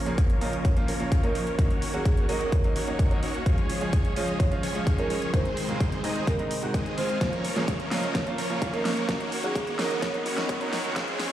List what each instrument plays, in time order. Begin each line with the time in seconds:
Already playing: analog synth pad C#3 A#3 F4 C#5, supersaw synth F3 A#3 C#4 A#4 C#5, riser
0.06 grand piano A#2 F3 A#3 C#4 G#4, closed hi-hat
0.18 kick, closed hi-hat
0.30 closed hi-hat
0.41 grand piano A#2 F3 A#3 C#4 F4, supersaw synth F3 A#3 C#4 A#4 D#5, marimba C#5, open hi-hat
0.53 closed hi-hat
0.65 marimba C#5, kick, closed hi-hat
0.76 grand piano A#2 F3 A#3 C#4 F4, closed hi-hat
0.88 supersaw synth F3 A#3 C#4 A#4 C#5, open hi-hat
0.99 grand piano A#2 F3 A#3 C#4 F4, closed hi-hat
1.12 kick, closed hi-hat
1.23 grand piano A#2 F3 A#3 C#4 D#4, marimba A#4, closed hi-hat
1.35 supersaw synth F3 A#3 C#4 A#4 C#5, open hi-hat
1.47 closed hi-hat
1.58 supersaw synth D#3 A#3 C#4 F#4 C#5, analog synth pad D#3 A#3 F#4 C#5, grand piano F#3 A#3 C#4 D#4, kick, closed hi-hat
1.70 closed hi-hat
1.82 open hi-hat
1.93 grand piano F#3 A#3 C#4 F#4, marimba G#4, closed hi-hat
2.05 kick, closed hi-hat
2.17 closed hi-hat
2.28 supersaw synth D#3 A#3 C#4 F#4 D#5, grand piano F#3 A#3 C#4 D#4, marimba A#4, open hi-hat
2.41 marimba A#4, closed hi-hat
2.52 marimba C#5, kick, closed hi-hat
2.63 grand piano F#3 A#3 C#4 D#4, closed hi-hat
2.76 supersaw synth D#3 A#3 C#4 F#4 C#5, open hi-hat
2.87 grand piano F#3 A#3 C#4 D#4, closed hi-hat
2.99 kick, closed hi-hat
3.10 grand piano F#3 A#3 C#4 D#4, closed hi-hat
3.23 supersaw synth D#3 A#3 C#4 F#4 C#5, open hi-hat
3.34 closed hi-hat
3.46 analog synth pad C#3 G#3 F4, grand piano F3 G#3 C#4 F4, supersaw synth F3 G#3, kick, closed hi-hat
3.58 closed hi-hat
3.70 open hi-hat
3.81 grand piano F3 G#3 C#4 G#4, closed hi-hat
3.93 kick, closed hi-hat
4.05 closed hi-hat
4.16 grand piano F3 G#3 C#4 F4, supersaw synth F3 G#3 C#4 G#4 D#5, marimba C#5, open hi-hat
4.28 closed hi-hat
4.40 marimba C#5, kick, closed hi-hat
4.51 grand piano F3 G#3 C#4 F4, closed hi-hat
4.63 supersaw synth F3 G#3 C#4 G#4 C#5, open hi-hat
4.74 grand piano F3 G#3 C#4 F4, closed hi-hat
4.87 kick, closed hi-hat
4.98 grand piano F3 G#3 C#4 D#4, marimba A#4, closed hi-hat
5.10 supersaw synth F3 G#3 C#4 G#4 C#5, open hi-hat
5.22 closed hi-hat
5.33 grand piano G#2 D#3 G#3 C4 D#4, analog synth pad C3 G#3 D#4 C5, supersaw synth D#3 G#3 C4 G#4 C5, marimba C5, kick, closed hi-hat
5.45 closed hi-hat
5.57 open hi-hat
5.68 grand piano G#2 D#3 G#3 C4 F4, closed hi-hat
5.80 kick, closed hi-hat
5.92 closed hi-hat
6.03 grand piano G#2 D#3 G#3 C4 D#4, supersaw synth D#3 G#3 C4 G#4 D#5, open hi-hat
6.16 closed hi-hat
6.27 marimba A#4, kick, closed hi-hat
6.38 grand piano G#2 D#3 G#3 C4 D#4, closed hi-hat
6.51 open hi-hat
6.62 grand piano G#2 D#3 G#3 C4 F#4, closed hi-hat
6.74 supersaw synth D#3 G#3 C4 G#4 D#5, kick, closed hi-hat
6.86 closed hi-hat
6.97 grand piano D#3 G#3 C4 F4, supersaw synth D#3 G#3 C4 G#4 F5, marimba C5, open hi-hat
7.09 closed hi-hat
7.21 grand piano A#2 F3 A#3 C#4 F4, analog synth pad C#3 A#3 F4 C#5, supersaw synth F3 A#3 C#4 A#4 C#5, kick, snare, closed hi-hat
7.33 closed hi-hat
7.45 open hi-hat
7.56 grand piano A#2 F3 A#3 C#4 G#4, snare, closed hi-hat
7.68 kick, closed hi-hat
7.80 closed hi-hat
7.91 grand piano A#2 F3 A#3 C#4 F4, supersaw synth F3 A#3 C#4 A#4 D#5, marimba C#5, snare, open hi-hat
8.03 closed hi-hat
8.15 marimba C#5, kick, snare, closed hi-hat
8.26 grand piano A#2 F3 A#3 C#4 F4, closed hi-hat
8.38 supersaw synth F3 A#3 C#4 A#4 C#5, open hi-hat
8.49 grand piano A#2 F3 A#3 C#4 F4, closed hi-hat
8.62 kick, closed hi-hat
8.73 grand piano A#2 F3 A#3 C#4 D#4, marimba A#4, closed hi-hat
8.85 supersaw synth F3 A#3 C#4 A#4 C#5, snare, open hi-hat
8.97 closed hi-hat
9.08 analog synth pad D#3 A#3 F#4, supersaw synth D#3 F#4, grand piano F#3 A#3 C#4 D#4, kick, snare, closed hi-hat
9.20 closed hi-hat
9.32 open hi-hat
9.43 grand piano F#3 A#3 C#4 F#4, marimba G#4, closed hi-hat
9.55 kick, closed hi-hat
9.67 closed hi-hat
9.78 supersaw synth D#3 A#3 C#4 F#4 D#5, grand piano F#3 A#3 C#4 D#4, marimba A#4, snare, open hi-hat
9.91 marimba A#4, closed hi-hat
10.02 marimba C#5, kick, snare, closed hi-hat
10.13 grand piano F#3 A#3 C#4 D#4, closed hi-hat
10.26 supersaw synth D#3 A#3 C#4 F#4 C#5, open hi-hat
10.37 grand piano F#3 A#3 C#4 D#4, snare, closed hi-hat
10.49 kick, closed hi-hat
10.60 grand piano F#3 A#3 C#4 D#4, closed hi-hat
10.73 supersaw synth D#3 A#3 C#4 F#4 C#5, snare, open hi-hat
10.84 closed hi-hat
10.95 analog synth pad C#3 G#3 F4 C#5, grand piano F3 G#3 C#4 F4, supersaw synth F3 G#3 C#4 G#4, kick, snare, closed hi-hat
11.08 closed hi-hat
11.20 snare, open hi-hat